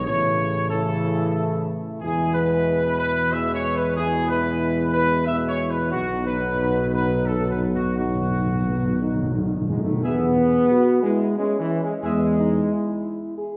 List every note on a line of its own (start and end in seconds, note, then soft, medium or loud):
0.05 1.75 A1 medium
0.05 0.70 C#3 medium
0.05 0.70 E3 medium
0.05 0.72 A3 medium
0.05 0.72 E4 medium
0.05 0.68 C#5 medium
0.70 1.85 C#3 medium
0.70 1.85 E3 medium
0.70 1.99 A3 medium
0.70 1.99 E4 medium
0.70 1.65 A4 medium
2.01 5.90 E2 medium
2.01 3.31 B2 medium
2.01 3.28 E3 medium
2.01 3.17 G#3 medium
2.01 3.17 E4 medium
2.01 2.32 G#4 medium
2.34 2.95 B4 medium
2.99 3.30 B4 medium
3.32 3.94 B2 medium
3.32 3.94 E3 medium
3.32 3.94 G#3 medium
3.32 3.95 E4 medium
3.32 3.54 E5 medium
3.54 3.74 C#5 medium
3.76 3.98 B4 medium
3.97 5.24 B2 medium
3.97 5.24 E3 medium
3.97 5.24 G#3 medium
3.97 5.24 E4 medium
3.97 4.27 G#4 medium
4.28 4.90 B4 medium
4.94 5.25 B4 medium
5.26 5.90 B2 medium
5.26 5.90 E3 medium
5.26 5.90 G#3 medium
5.26 5.90 E4 medium
5.26 5.36 E5 medium
5.48 5.69 C#5 medium
5.71 5.94 B4 medium
5.91 9.66 B1 medium
5.91 6.01 B2 soft
5.91 7.92 B3 medium
5.91 7.92 D#4 medium
5.91 6.24 F#4 medium
5.96 7.93 B2 medium
5.96 7.93 F#3 medium
6.02 6.08 B2 soft
6.09 6.16 B2 soft
6.26 6.90 B4 medium
6.33 6.39 B2 soft
6.40 6.46 B2 soft
6.48 6.53 B2 soft
6.54 6.61 B2 soft
6.62 6.69 B2 soft
6.70 6.77 B2 soft
6.78 6.84 B2 soft
6.85 6.92 B2 soft
6.93 6.99 B2 soft
6.93 7.25 B4 medium
7.01 7.07 B2 soft
7.08 7.14 B2 soft
7.15 7.22 B2 soft
7.23 7.30 B2 soft
7.23 7.50 A4 medium
7.31 7.38 B2 soft
7.39 7.44 B2 soft
7.45 7.52 B2 soft
7.51 7.59 B2 soft
7.51 7.61 B4 medium
7.60 7.67 B2 soft
7.68 7.75 B2 soft
7.74 7.83 B2 soft
7.74 7.95 F#4 medium
7.85 7.91 B2 soft
7.92 7.98 B2 soft
7.92 8.54 D#4 soft
7.96 9.51 B2 soft
7.96 8.07 B2 soft
7.96 9.51 F#3 soft
7.96 8.54 B3 soft
7.96 9.30 F#4 medium
8.08 8.14 B2 soft
8.15 8.20 B2 soft
8.22 8.29 B2 medium
8.30 8.37 B2 medium
8.38 8.45 B2 medium
8.46 8.53 B2 soft
8.54 8.60 B2 medium
8.62 8.68 B2 medium
8.66 8.76 B2 medium
8.66 8.97 B3 soft
8.77 8.84 B2 medium
8.85 8.91 B2 medium
8.92 8.99 B2 medium
9.00 9.06 B2 medium
9.00 9.65 D#4 medium
9.08 9.14 B2 medium
9.15 9.22 B2 medium
9.23 9.29 B2 medium
9.30 9.37 B2 medium
9.38 9.44 B2 medium
9.45 9.53 B2 medium
9.54 9.60 B2 medium
9.61 9.68 B2 medium
9.68 9.76 B2 medium
9.68 9.79 G#3 medium
9.68 10.01 D#4 soft
9.77 9.83 B2 medium
9.82 9.92 B2 medium
9.82 10.03 A3 medium
9.93 10.00 B2 medium
10.03 10.58 E2 medium
10.03 11.04 B3 medium
10.03 10.26 G#4 medium
10.03 10.66 G#4 medium
10.03 10.27 E5 medium
10.70 11.01 F#4 medium
11.03 11.34 G#3 medium
11.03 11.35 E4 medium
11.38 11.58 G#3 medium
11.38 12.00 C#4 medium
11.60 11.80 E3 medium
11.82 11.92 G#3 medium
12.03 12.59 E2 medium
12.03 13.32 G#3 medium
12.03 12.37 B3 medium
12.03 12.26 G#4 medium
12.03 12.26 E5 medium
12.38 12.69 D#4 medium
12.71 13.37 E4 medium
13.37 13.57 G#4 medium